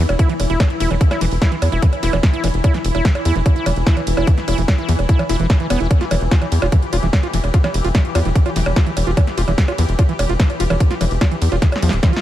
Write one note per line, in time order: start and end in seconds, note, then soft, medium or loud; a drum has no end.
0.00 12.21 E3 medium
0.00 5.93 E4 medium
0.09 0.16 E1 medium
0.09 closed hi-hat soft
0.09 percussion blips medium
0.19 0.29 E4 medium
0.19 kick loud
0.19 closed hi-hat loud
0.29 0.34 E3 medium
0.29 closed hi-hat soft
0.40 0.46 E1 loud
0.40 open hi-hat loud
0.40 ride medium
0.40 percussion blips soft
0.50 0.57 E1 medium
0.50 0.59 E4 medium
0.50 closed hi-hat soft
0.60 0.64 E3 medium
0.60 kick loud
0.60 snare loud
0.60 closed hi-hat loud
0.60 percussion blips medium
0.70 closed hi-hat soft
0.80 0.87 E1 loud
0.80 0.90 E4 medium
0.80 open hi-hat loud
0.80 ride medium
0.91 0.97 E1 medium
0.91 0.95 E3 medium
0.91 percussion blips soft
1.01 kick loud
1.01 closed hi-hat medium
1.11 1.21 E4 medium
1.11 snare soft
1.11 closed hi-hat soft
1.11 percussion blips medium
1.21 1.28 E1 loud
1.21 1.25 E3 medium
1.21 open hi-hat loud
1.21 ride medium
1.31 1.38 E1 medium
1.31 open hi-hat medium
1.42 1.51 E4 medium
1.42 kick loud
1.42 snare loud
1.42 closed hi-hat medium
1.42 percussion blips soft
1.52 1.56 E3 medium
1.52 closed hi-hat soft
1.62 1.69 E2 loud
1.62 open hi-hat loud
1.62 ride medium
1.62 percussion blips medium
1.72 1.79 E1 medium
1.72 1.82 E4 medium
1.72 closed hi-hat soft
1.82 1.87 E3 medium
1.82 kick loud
1.82 closed hi-hat medium
1.93 closed hi-hat soft
1.93 percussion blips soft
2.03 2.10 E1 loud
2.03 2.13 E4 medium
2.03 snare soft
2.03 open hi-hat loud
2.03 ride medium
2.13 2.20 E1 medium
2.13 2.17 E3 medium
2.13 closed hi-hat soft
2.13 percussion blips medium
2.23 kick loud
2.23 snare loud
2.23 closed hi-hat medium
2.33 2.43 E4 medium
2.33 closed hi-hat soft
2.44 2.50 E1 loud
2.44 2.48 E3 medium
2.44 open hi-hat loud
2.44 ride medium
2.44 percussion blips soft
2.54 2.61 E1 medium
2.54 closed hi-hat soft
2.64 2.74 E4 medium
2.64 kick loud
2.64 closed hi-hat medium
2.64 percussion blips medium
2.74 2.79 E3 medium
2.74 snare soft
2.74 closed hi-hat soft
2.84 2.91 E1 loud
2.84 open hi-hat loud
2.84 ride medium
2.95 3.01 E1 medium
2.95 3.04 E4 medium
2.95 closed hi-hat soft
2.95 percussion blips soft
3.05 3.09 E3 medium
3.05 kick loud
3.05 snare loud
3.05 closed hi-hat medium
3.15 closed hi-hat soft
3.15 percussion blips medium
3.25 3.32 E2 loud
3.25 3.35 E4 medium
3.25 open hi-hat loud
3.25 ride medium
3.35 3.42 E1 medium
3.35 3.40 E3 medium
3.35 closed hi-hat soft
3.46 kick loud
3.46 closed hi-hat medium
3.46 percussion blips soft
3.56 3.66 E4 medium
3.56 closed hi-hat soft
3.66 3.73 E1 loud
3.66 3.70 E3 medium
3.66 open hi-hat loud
3.66 ride medium
3.66 percussion blips medium
3.76 3.83 E1 medium
3.76 closed hi-hat soft
3.87 3.96 E4 medium
3.87 kick loud
3.87 snare loud
3.87 closed hi-hat medium
3.97 4.01 E3 medium
3.97 closed hi-hat soft
3.97 percussion blips soft
4.07 4.14 E1 loud
4.07 open hi-hat loud
4.07 ride medium
4.17 4.24 E1 medium
4.17 4.27 E4 medium
4.17 closed hi-hat soft
4.17 percussion blips medium
4.27 4.32 E3 medium
4.27 kick loud
4.27 closed hi-hat medium
4.38 snare soft
4.38 closed hi-hat soft
4.48 4.54 E1 loud
4.48 4.57 E4 medium
4.48 open hi-hat loud
4.48 ride medium
4.48 percussion blips soft
4.58 4.65 E1 medium
4.58 4.62 E3 medium
4.58 open hi-hat medium
4.68 kick loud
4.68 snare loud
4.68 closed hi-hat medium
4.68 percussion blips medium
4.78 4.88 E4 medium
4.78 closed hi-hat soft
4.89 4.95 E2 loud
4.89 4.93 E3 medium
4.89 open hi-hat loud
4.89 ride medium
4.99 5.06 E1 medium
4.99 closed hi-hat soft
4.99 percussion blips soft
5.09 5.19 E4 medium
5.09 kick loud
5.09 closed hi-hat medium
5.19 5.23 E3 medium
5.19 closed hi-hat soft
5.19 percussion blips medium
5.29 5.36 E1 medium
5.29 5.36 E4 loud
5.29 snare soft
5.29 open hi-hat loud
5.29 ride medium
5.40 5.46 E1 medium
5.40 5.47 E3 loud
5.40 closed hi-hat soft
5.50 kick loud
5.50 snare loud
5.50 closed hi-hat medium
5.50 percussion blips soft
5.60 5.67 E3 medium
5.60 closed hi-hat soft
5.70 5.77 E1 loud
5.70 5.80 B3 loud
5.70 open hi-hat loud
5.70 ride medium
5.70 percussion blips medium
5.80 5.87 E1 medium
5.80 5.87 E4 medium
5.80 closed hi-hat soft
5.91 12.21 G4 medium
5.91 kick loud
5.91 closed hi-hat medium
5.91 percussion blips soft
6.01 6.05 F4 loud
6.01 snare soft
6.01 closed hi-hat soft
6.11 6.18 E1 loud
6.11 6.15 E3 medium
6.11 open hi-hat loud
6.11 ride medium
6.11 percussion blips medium
6.21 6.28 E1 medium
6.21 closed hi-hat soft
6.31 6.36 F4 loud
6.31 kick loud
6.31 snare loud
6.31 closed hi-hat medium
6.42 6.46 E3 medium
6.42 closed hi-hat soft
6.42 percussion blips soft
6.52 6.59 E2 loud
6.52 open hi-hat loud
6.52 ride medium
6.62 6.69 E1 medium
6.62 6.66 F4 loud
6.62 percussion blips medium
6.72 6.76 E3 medium
6.72 kick loud
6.72 closed hi-hat medium
6.82 closed hi-hat soft
6.93 6.99 E1 loud
6.93 6.97 F4 loud
6.93 open hi-hat loud
6.93 ride medium
6.93 percussion blips soft
7.03 7.10 E1 medium
7.03 7.07 E3 medium
7.03 closed hi-hat soft
7.13 kick loud
7.13 snare loud
7.13 closed hi-hat medium
7.13 percussion blips medium
7.23 7.27 F4 loud
7.23 closed hi-hat soft
7.33 7.40 E1 loud
7.33 7.38 E3 medium
7.33 open hi-hat loud
7.33 ride medium
7.44 7.50 E1 medium
7.44 closed hi-hat soft
7.44 percussion blips soft
7.54 7.58 F4 loud
7.54 kick loud
7.54 closed hi-hat medium
7.64 7.68 E3 medium
7.64 snare soft
7.64 closed hi-hat soft
7.64 percussion blips medium
7.74 7.81 E1 loud
7.74 open hi-hat loud
7.74 ride medium
7.84 7.91 E1 medium
7.84 7.89 F4 loud
7.84 open hi-hat medium
7.95 7.99 E3 medium
7.95 kick loud
7.95 snare loud
7.95 closed hi-hat medium
7.95 percussion blips soft
8.05 closed hi-hat soft
8.15 8.22 E2 medium
8.15 8.19 F4 loud
8.15 open hi-hat loud
8.15 ride medium
8.15 percussion blips medium
8.25 8.32 E1 medium
8.25 8.30 E3 medium
8.25 closed hi-hat soft
8.35 kick loud
8.35 closed hi-hat medium
8.46 8.50 F4 loud
8.46 closed hi-hat soft
8.46 percussion blips soft
8.56 8.63 E1 loud
8.56 8.60 E3 medium
8.56 snare soft
8.56 open hi-hat loud
8.56 ride medium
8.66 8.73 E1 medium
8.66 percussion blips medium
8.76 8.81 F4 loud
8.76 kick loud
8.76 snare loud
8.76 closed hi-hat medium
8.87 8.91 E3 medium
8.87 closed hi-hat soft
8.97 9.03 E1 loud
8.97 open hi-hat loud
8.97 ride medium
8.97 percussion blips soft
9.07 9.14 E1 medium
9.07 9.11 F4 loud
9.07 closed hi-hat soft
9.17 9.21 E3 medium
9.17 kick loud
9.17 closed hi-hat medium
9.17 percussion blips medium
9.27 snare soft
9.27 closed hi-hat soft
9.38 9.44 E1 loud
9.38 9.42 F4 loud
9.38 open hi-hat loud
9.38 ride medium
9.48 9.54 E1 medium
9.48 9.52 E3 medium
9.48 closed hi-hat soft
9.48 percussion blips soft
9.58 kick loud
9.58 snare loud
9.58 closed hi-hat loud
9.68 9.72 F4 loud
9.68 closed hi-hat soft
9.68 percussion blips medium
9.78 9.85 E2 loud
9.78 9.83 E3 medium
9.78 open hi-hat loud
9.78 ride medium
9.89 9.95 E1 medium
9.89 closed hi-hat soft
9.99 10.03 F4 loud
9.99 kick loud
9.99 closed hi-hat loud
9.99 percussion blips soft
10.09 10.13 E3 medium
10.09 closed hi-hat soft
10.19 10.26 E1 loud
10.19 open hi-hat loud
10.19 ride medium
10.19 percussion blips medium
10.29 10.36 E1 medium
10.29 10.34 F4 loud
10.29 closed hi-hat soft
10.40 10.44 E3 medium
10.40 kick loud
10.40 snare loud
10.40 closed hi-hat medium
10.50 closed hi-hat soft
10.50 percussion blips soft
10.60 10.67 E1 loud
10.60 10.64 F4 loud
10.60 open hi-hat loud
10.60 ride medium
10.70 10.77 E1 medium
10.70 10.74 E3 medium
10.70 closed hi-hat soft
10.70 percussion blips medium
10.80 kick loud
10.80 closed hi-hat loud
10.91 10.95 F4 loud
10.91 snare soft
10.91 closed hi-hat soft
11.01 11.08 E1 loud
11.01 11.05 E3 medium
11.01 open hi-hat loud
11.01 ride medium
11.01 percussion blips soft
11.11 11.18 E1 medium
11.11 open hi-hat medium
11.21 11.25 F4 loud
11.21 kick loud
11.21 snare loud
11.21 closed hi-hat loud
11.21 percussion blips medium
11.31 11.36 E3 medium
11.31 closed hi-hat soft
11.42 11.48 E2 loud
11.42 open hi-hat loud
11.42 ride medium
11.52 11.59 E1 medium
11.52 11.56 F4 loud
11.52 closed hi-hat soft
11.52 percussion blips soft
11.62 11.66 E3 medium
11.62 kick loud
11.62 snare medium
11.62 closed hi-hat loud
11.72 snare medium
11.72 closed hi-hat soft
11.72 percussion blips medium
11.82 11.89 E2 loud
11.82 11.92 F3 medium
11.82 open hi-hat loud
11.82 ride medium
11.89 11.99 D1 medium
11.89 snare medium
11.89 closed hi-hat soft
12.03 12.13 E3 medium
12.03 kick loud
12.03 snare medium
12.03 closed hi-hat loud
12.03 percussion blips soft
12.13 12.21 F4 medium
12.13 snare loud
12.13 closed hi-hat soft